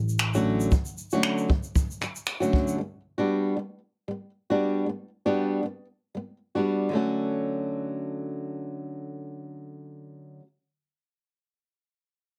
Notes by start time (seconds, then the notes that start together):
Already playing: A1 D3 F#3
0.09 shaker
0.19 finger snap, shaker
0.34 D3 F#3 A3 C#4 F#4, shaker
0.60 shaker
0.72 D3 F#3, kick, shaker
0.85 shaker
0.98 shaker
1.11 D3 F#3 A3 C#4 F#4, shaker
1.23 finger snap, shaker
1.38 shaker
1.49 D3 F#3, kick
1.63 shaker
1.75 kick, shaker
1.91 shaker
2.01 D3 F#3, finger snap, shaker
2.16 shaker
2.27 finger snap, shaker
2.40 D3 F#3 A3 C#4 F#4, shaker
2.53 kick
2.68 shaker
2.78 G3 B3
3.18 G3 B3 D4 F#4
3.57 G3 B3
4.08 G3 B3
4.50 G3 B3 D4 F#4
4.86 G3 B3
5.26 G3 B3 D4 F#4
5.63 G3 B3
6.15 G3 B3
6.55 G3 B3 D4 F#4
6.89 D3 F#3
6.93 A3 C#4 F#4